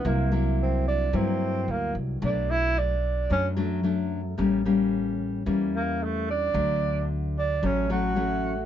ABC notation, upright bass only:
X:1
M:4/4
L:1/8
Q:1/4=111
K:Bdor
V:1 name="Upright bass" clef=bass
=C,,4 =G,,2 D,, C,, | B,,,4 F,,4 | A,,,4 E,,4 | D,,4 A,,,4 |]